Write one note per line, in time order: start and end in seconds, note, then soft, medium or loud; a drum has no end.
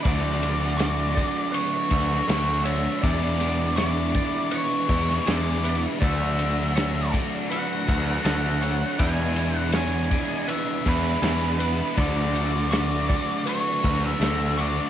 0.03 1.20 D2 medium
0.03 0.77 D3 medium
0.03 1.89 F#3 medium
0.03 0.42 A3 medium
0.03 0.42 D4 medium
0.03 0.40 F#4 medium
0.03 0.77 D5 medium
0.03 1.54 D5 loud
0.03 kick loud
0.03 ride medium
0.41 0.77 A3 medium
0.41 0.79 D4 medium
0.41 0.79 F#4 medium
0.41 snare soft
0.41 ride medium
0.78 1.52 D3 medium
0.78 1.16 A3 medium
0.78 1.16 D4 medium
0.78 1.14 F#4 medium
0.78 1.16 C#6 medium
0.78 snare loud
0.78 ride medium
1.15 1.52 A3 soft
1.15 1.53 D4 medium
1.15 1.53 F#4 medium
1.15 2.65 D5 medium
1.15 kick medium
1.15 ride medium
1.52 2.27 D3 medium
1.52 1.90 A3 medium
1.52 1.91 D4 medium
1.52 1.88 F#4 loud
1.52 2.27 B4 medium
1.52 2.28 C#5 medium
1.52 ride medium
1.90 2.20 D2 medium
1.90 2.26 D3 medium
1.90 2.27 F#3 medium
1.90 2.27 A3 medium
1.90 2.28 D4 medium
1.90 2.28 F#4 medium
1.90 kick medium
1.90 ride medium
2.28 2.86 D2 medium
2.28 3.00 D3 medium
2.28 3.01 F#3 medium
2.28 2.66 A3 medium
2.28 2.66 D4 medium
2.28 2.64 F#4 medium
2.28 2.65 A4 medium
2.28 2.64 C#5 medium
2.28 snare loud
2.28 ride medium
2.64 3.01 A3 medium
2.64 3.04 D4 medium
2.64 3.00 F#4 medium
2.64 3.01 C#5 medium
2.64 3.03 E5 medium
2.64 ride medium
3.02 3.77 E2 medium
3.02 4.19 E2 medium
3.02 3.78 B2 medium
3.02 3.41 E3 medium
3.02 3.41 G#3 loud
3.02 4.87 B3 medium
3.02 3.40 D4 loud
3.02 3.39 E4 loud
3.02 4.86 G#4 medium
3.02 3.79 D5 medium
3.02 3.78 D5 loud
3.02 kick loud
3.02 ride medium
3.40 3.75 E3 medium
3.40 3.75 G#3 medium
3.40 3.77 D4 medium
3.40 3.77 E4 medium
3.40 snare soft
3.40 ride medium
3.76 4.16 E3 medium
3.76 4.15 G#3 medium
3.76 4.15 D4 medium
3.76 4.14 E4 medium
3.76 4.54 D5 medium
3.76 4.14 C#6 medium
3.76 snare loud
3.76 ride medium
4.14 4.51 E3 medium
4.14 4.51 G#3 medium
4.14 4.53 D4 medium
4.14 4.52 E4 medium
4.14 5.29 D5 medium
4.14 kick medium
4.14 ride medium
4.51 5.26 E2 medium
4.51 5.26 B2 medium
4.51 4.90 E3 medium
4.51 4.90 G#3 medium
4.51 4.90 D4 medium
4.51 4.88 E4 medium
4.51 5.26 B4 medium
4.51 5.29 C#5 medium
4.51 ride medium
4.87 5.18 E2 medium
4.87 5.26 G#3 medium
4.87 5.24 B3 medium
4.87 5.27 D4 medium
4.87 5.27 E4 medium
4.87 5.23 G#4 medium
4.87 kick medium
4.87 ride medium
4.92 5.25 E3 soft
5.10 snare soft
5.26 5.85 E2 medium
5.26 5.64 E3 medium
5.26 5.63 G#3 medium
5.26 5.99 B3 medium
5.26 5.63 D4 medium
5.26 5.62 E4 medium
5.26 5.64 G#4 medium
5.26 6.00 G#4 medium
5.26 5.80 D5 medium
5.26 snare loud
5.26 ride medium
5.63 5.99 E3 soft
5.63 5.99 G#3 medium
5.63 6.00 D4 medium
5.63 5.98 E4 medium
5.63 6.00 B4 medium
5.63 ride medium
5.99 7.17 D2 medium
5.99 6.72 D3 medium
5.99 7.85 F#3 medium
5.99 6.37 A3 medium
5.99 6.37 D4 medium
5.99 6.35 F#4 medium
5.99 6.79 D5 medium
5.99 kick loud
5.99 ride medium
6.04 7.10 E5 medium
6.36 6.73 A3 medium
6.36 6.75 D4 medium
6.36 6.74 F#4 medium
6.36 ride medium
6.73 7.48 D3 medium
6.73 7.12 A3 medium
6.73 7.12 D4 medium
6.73 7.10 F#4 medium
6.73 7.12 C#5 medium
6.73 ride medium
6.78 snare medium
7.11 7.49 A3 medium
7.11 7.50 D4 medium
7.11 7.50 F#4 medium
7.11 8.61 D5 medium
7.11 kick medium
7.11 ride medium
7.49 8.22 D3 medium
7.49 7.87 A3 medium
7.49 7.87 D4 loud
7.49 7.85 F#4 loud
7.49 8.24 B4 medium
7.49 8.25 F#5 medium
7.49 ride medium
7.87 8.17 D2 medium
7.87 8.22 D3 medium
7.87 8.23 F#3 medium
7.87 8.23 A3 soft
7.87 8.25 D4 medium
7.87 8.24 F#4 medium
7.87 kick medium
7.87 ride medium
8.24 8.82 D2 medium
8.24 8.96 D3 medium
8.24 8.97 F#3 medium
8.24 8.62 A3 medium
8.24 8.61 D4 medium
8.24 8.60 F#4 medium
8.24 8.62 A4 medium
8.24 9.02 F#5 loud
8.24 snare loud
8.24 ride medium
8.61 8.97 A3 medium
8.61 9.00 D4 medium
8.61 8.96 F#4 medium
8.61 8.99 C#5 medium
8.61 ride medium
8.99 9.73 E2 medium
8.99 10.15 E2 medium
8.99 9.74 B2 medium
8.99 9.37 E3 medium
8.99 9.36 G#3 medium
8.99 10.83 B3 medium
8.99 9.37 D4 loud
8.99 9.35 E4 medium
8.99 10.84 G#4 medium
8.99 9.74 D5 medium
8.99 9.58 G#5 loud
8.99 kick medium
8.99 ride medium
9.36 9.73 E3 medium
9.36 9.74 G#3 medium
9.36 9.75 D4 medium
9.36 9.74 E4 medium
9.36 ride medium
9.58 9.74 F#5 loud
9.73 10.11 E3 medium
9.73 10.11 G#3 medium
9.73 10.11 D4 medium
9.73 10.09 E4 medium
9.73 10.10 C#5 medium
9.73 10.51 G#5 medium
9.73 snare loud
9.73 ride medium
10.10 10.47 E3 medium
10.10 10.48 G#3 medium
10.10 10.48 D4 medium
10.10 10.49 E4 medium
10.10 11.25 D5 medium
10.10 kick medium
10.10 ride medium
10.47 11.22 E2 medium
10.47 11.23 B2 medium
10.47 10.87 E3 medium
10.47 10.85 G#3 medium
10.47 10.87 D4 medium
10.47 10.84 E4 loud
10.47 11.22 B4 medium
10.47 10.87 E5 medium
10.47 ride medium
10.85 11.15 E2 medium
10.85 11.21 E3 medium
10.85 11.21 G#3 medium
10.85 11.21 B3 medium
10.85 11.23 D4 medium
10.85 11.23 E4 medium
10.85 11.20 G#4 medium
10.85 11.99 B4 medium
10.85 kick medium
10.85 ride medium
11.22 11.80 E2 medium
11.22 11.59 E3 medium
11.22 11.59 G#3 medium
11.22 11.96 B3 medium
11.22 11.59 D4 medium
11.22 11.58 E4 medium
11.22 11.59 G#4 medium
11.22 11.97 G#4 medium
11.22 snare loud
11.22 ride medium
11.59 11.95 E3 medium
11.59 11.95 G#3 medium
11.59 11.98 D4 medium
11.59 11.95 E4 medium
11.59 11.97 B4 medium
11.59 ride medium
11.97 13.13 D2 medium
11.97 12.70 D3 medium
11.97 13.82 F#3 medium
11.97 12.35 A3 loud
11.97 12.34 D4 medium
11.97 12.33 F#4 medium
11.97 12.71 D5 medium
11.97 13.48 D5 medium
11.97 kick loud
11.97 ride medium
12.34 12.71 A3 medium
12.34 12.72 D4 medium
12.34 12.71 F#4 medium
12.34 ride medium
12.71 13.46 D3 medium
12.71 13.09 A3 medium
12.71 13.09 D4 medium
12.71 13.08 F#4 medium
12.71 13.09 C#6 medium
12.71 snare loud
12.71 ride medium
13.09 13.46 A3 medium
13.09 13.47 D4 medium
13.09 13.47 F#4 medium
13.09 14.61 D5 medium
13.09 kick medium
13.09 ride medium
13.46 14.21 D3 medium
13.46 13.85 A3 medium
13.46 13.84 D4 loud
13.46 13.83 F#4 medium
13.46 14.20 B4 medium
13.46 14.05 C#5 medium
13.46 ride medium
13.84 14.13 D2 medium
13.84 14.19 D3 medium
13.84 14.20 F#3 medium
13.84 14.22 A3 soft
13.84 14.23 D4 medium
13.84 14.23 F#4 medium
13.84 kick medium
13.84 ride medium
14.04 14.61 E5 medium
14.20 14.78 D2 medium
14.20 14.90 D3 medium
14.20 14.90 F#3 medium
14.20 14.60 A3 medium
14.20 14.59 D4 medium
14.20 14.59 A4 medium
14.20 snare medium
14.20 ride medium
14.24 14.58 F#4 medium
14.58 14.90 A3 medium
14.58 14.90 D4 medium
14.58 14.90 F#4 medium
14.58 14.90 D5 medium
14.58 14.90 C#6 medium
14.58 ride medium